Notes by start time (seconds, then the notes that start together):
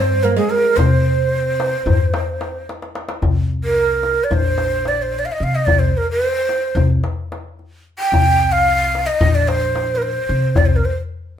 Already playing: G2 C4 C5
0.23 A#3 A#4, darbuka ka
0.37 G#3 G#4
0.50 A#4
0.76 C3 C4 C5, darbuka dum
1.33 darbuka ka
1.60 darbuka tek
1.86 G2, darbuka dum
2.14 darbuka tek
2.41 darbuka tek
2.69 darbuka tek
2.82 darbuka ka
2.95 darbuka tek
3.09 darbuka ka
3.22 C2, darbuka dum
3.64 A#4
3.76 darbuka ka
4.03 darbuka tek
4.24 D5
4.31 A#1 C5, darbuka dum
4.58 darbuka tek
4.85 D5, darbuka tek
5.02 C5
5.13 darbuka ka
5.19 D5
5.25 F5
5.32 D#5
5.40 C3 F5, darbuka ka
5.55 D#5
5.66 C2 D5, darbuka dum
5.79 C5
5.97 A#4
6.11 C5
6.23 darbuka ka
6.49 darbuka tek
6.75 C2, darbuka dum
7.04 darbuka tek
7.32 darbuka tek
7.59 darbuka ka
7.99 G5
8.12 C2, darbuka dum
8.52 F5
8.67 darbuka ka
8.95 darbuka tek
9.06 D#5
9.21 A#1, darbuka dum
9.35 D5
9.48 C5, darbuka tek
9.76 darbuka tek
9.95 A#4
10.02 C5, darbuka ka
10.29 C3, darbuka ka
10.56 C2 D5, darbuka dum
10.66 C5
10.76 A#4
10.85 C5